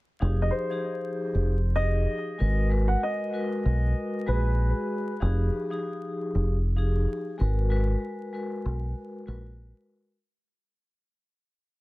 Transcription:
0.20 F1 F3 D#4 G4 G#4
0.42 D#5
0.51 C5
0.70 F3 D#4 G4 G#4
1.35 F1
1.76 F3 D#4 G4 G#4 D#5
2.38 G#1 G#3 F#4 A#4 B4
2.70 G#3 F#4 A#4 B4
2.88 F#5
3.03 D#5
3.33 G#3 F#4 A#4 B4
3.66 B1
4.26 A#1 G#3 F#4 G#4 B4
5.20 F1 F3 D#4 G4 G#4
5.70 F3 D#4 G4 G#4
6.35 F1
6.76 F3 D#4 G4 G#4
7.38 G#1 G#3 F#4 A#4 B4
7.70 G#3 F#4 A#4 B4
8.33 G#3 F#4 A#4 B4
8.66 B1
9.26 A#1 G#3 F#4 A#4 B4

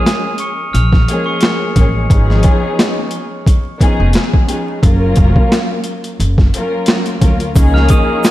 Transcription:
Already playing: F3 G#3 A#3 C#4 G#4 D#6 D#7
0.06 snare, closed hi-hat
0.38 C#6 C#7, closed hi-hat
0.73 A#1 F6 F7, closed hi-hat
0.93 kick, snare
1.08 F3 G#3 A#3 C#4 G#4, closed hi-hat
1.26 C#6 C#7
1.41 snare, closed hi-hat
1.76 A1 F3 G#3 A#3 C#4 G#4, kick, closed hi-hat
2.09 G#1 F3 B3 C#4 D#4 G#4, kick, closed hi-hat
2.30 snare
2.43 kick, closed hi-hat
2.79 snare, closed hi-hat
3.11 closed hi-hat
3.46 kick, closed hi-hat
3.79 F3 B3 C#4 D#4 G#4, kick, closed hi-hat
4.00 F1
4.13 snare, closed hi-hat
4.34 kick
4.46 F3 B3 C#4 D#4 G#4, closed hi-hat
4.81 F#1 F#3 A#3 C#4 F4 A#4, kick, closed hi-hat
5.16 F1, kick, closed hi-hat
5.36 kick
5.52 snare, closed hi-hat
5.84 closed hi-hat
6.04 closed hi-hat
6.20 F#1, closed hi-hat
6.38 kick, snare
6.54 F#3 A#3 C#4 F4 A#4, closed hi-hat
6.86 snare, closed hi-hat
7.06 closed hi-hat
7.21 D2 F#3 A#3 C#4 F4 A#4, kick, closed hi-hat
7.40 closed hi-hat
7.54 C#2 F3 A#3 C#4 D#4 G#4 A#4 D#5 F5 C#6, kick, closed hi-hat, shaker
7.74 F6 F7, snare
7.89 D#6 D#7, kick, closed hi-hat, shaker
8.24 snare, closed hi-hat, shaker

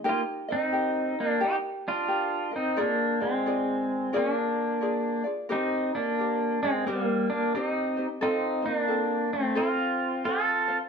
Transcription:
0.04 D#4 G4 A#4 D#5
0.09 A#3 F4
0.48 C4 D#4 A#4 D#5
0.72 G4 A#4
1.20 A#3 D4
1.40 D#4 G4 A#4
1.44 G4
1.88 D4 F4
2.08 G4 A#4
2.51 D#4 A#4 D#5
2.56 C4 D#4
2.77 A#3 F4 G#4 A#4 D5
2.81 D4
3.21 G#3 C4 F4 G#4 D5
3.46 F4 G#4 A#4 D5
4.13 A#3 F4 G#4 A#4 D5
4.18 D4
4.81 F4 G#4 A#4 D5
5.24 F4 G#4 D5
5.49 C4 D#4 G4 A#4 C5
5.95 A#3 D4
6.19 G4 A#4 C5
6.63 G#3 C4
6.87 G3 B3 G4 A#4 C5
7.04 A#3
7.30 A#3 D4
7.55 C4 D#4 G4 A#4 C5
7.97 D#4 G4 C5
8.21 C4 D#4 F4 A4 C5
8.62 C4 D#4 F4 C5
8.67 A#3
8.77 D4
8.88 C4 F4 A4 C5
9.33 A3 C4
9.55 C4 F4 A4 C5
10.25 C4 F4 A4 C5
10.68 C4 F4 C5

